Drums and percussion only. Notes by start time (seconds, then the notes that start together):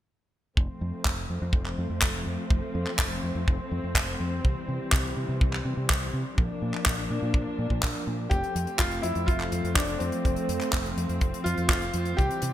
0.57 kick
1.05 kick, clap
1.53 kick
1.66 clap
2.02 kick, clap
2.50 kick
2.87 clap
2.99 kick, clap
3.48 kick
3.95 kick, clap
4.45 kick
4.92 kick, clap
5.41 kick
5.53 clap
5.90 kick, clap
6.38 kick
6.74 clap
6.86 kick, clap
7.34 kick
7.70 kick
7.83 kick, clap
8.31 kick, closed hi-hat
8.44 closed hi-hat
8.56 closed hi-hat
8.67 closed hi-hat
8.79 kick, clap, closed hi-hat
8.91 closed hi-hat
9.03 closed hi-hat
9.15 closed hi-hat
9.28 kick, closed hi-hat
9.40 clap, closed hi-hat
9.52 closed hi-hat
9.65 closed hi-hat
9.76 kick, clap, closed hi-hat
9.87 closed hi-hat
10.00 closed hi-hat
10.12 closed hi-hat
10.25 kick, closed hi-hat
10.36 closed hi-hat
10.49 closed hi-hat
10.61 clap, closed hi-hat
10.73 kick, clap, closed hi-hat
10.86 closed hi-hat
10.98 closed hi-hat
11.09 closed hi-hat
11.21 kick, closed hi-hat
11.34 closed hi-hat
11.46 closed hi-hat
11.58 closed hi-hat
11.69 kick, clap, closed hi-hat
11.82 closed hi-hat
11.94 closed hi-hat
12.05 closed hi-hat
12.19 kick, closed hi-hat
12.31 closed hi-hat
12.42 closed hi-hat